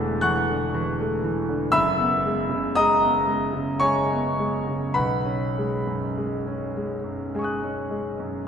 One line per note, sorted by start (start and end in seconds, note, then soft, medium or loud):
0.00 1.69 E1 medium
0.00 1.70 E2 medium
0.00 0.48 D3 medium
0.00 0.24 E3 medium
0.00 1.01 A3 medium
0.00 0.17 A5 medium
0.00 1.72 B5 medium
0.00 0.17 E6 medium
0.00 0.21 F#6 medium
0.00 0.20 A6 medium
0.00 1.75 B6 loud
0.21 0.63 E3 medium
0.21 1.20 F#5 medium
0.21 1.20 C#6 medium
0.21 1.23 F#6 loud
0.48 0.88 D3 medium
0.74 1.14 E3 medium
1.01 1.39 A3 medium
1.24 1.64 E3 medium
1.49 1.73 D3 medium
1.71 4.92 F#1 medium
1.71 4.93 F#2 medium
1.71 2.70 E5 medium
1.71 2.70 B5 medium
1.71 2.74 E6 loud
1.99 2.39 B3 medium
2.25 2.65 G#3 medium
2.50 2.91 C#3 medium
2.75 3.19 G#3 medium
2.75 3.79 D#5 medium
2.75 3.79 A#5 medium
2.75 3.82 D#6 loud
3.02 3.44 B3 medium
3.27 3.70 G#3 medium
3.54 3.98 C#3 soft
3.80 4.26 G#3 medium
3.80 4.92 C#5 medium
3.80 4.92 G#5 medium
3.80 4.96 C#6 loud
4.13 4.57 B3 medium
4.39 4.86 G#3 medium
4.68 4.97 C#3 medium
4.94 8.47 B1 medium
4.94 7.30 B4 medium
4.94 7.30 F#5 medium
4.94 7.34 B5 medium
5.25 5.75 C#4 medium
5.58 6.06 G#3 medium
5.87 6.36 F#2 medium
6.18 6.65 G#3 medium
6.47 6.95 C#4 soft
6.77 7.24 G#3 medium
7.04 7.51 F#2 soft
7.35 7.81 G#3 medium
7.35 8.47 G#5 soft
7.39 8.47 C#6 soft
7.39 8.47 D#6 soft
7.44 8.47 F#6 soft
7.64 8.10 C#4 soft
7.91 8.39 G#3 medium
8.20 8.47 F#2 soft